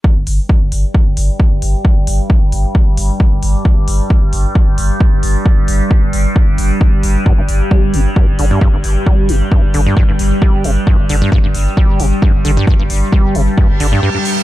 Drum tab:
HH |-o-o-o-o|-o-o-o-o|-o-o-o-o|-o-o-o-o|
BD |o-o-o-o-|o-o-o-o-|o-o-o-o-|o-o-o-o-|

HH |-o-o-o-o|-o-o-o-o|-o-o-o-o|-o-o-o-o|
BD |o-o-o-o-|o-o-o-o-|o-o-o-o-|o-o-o---|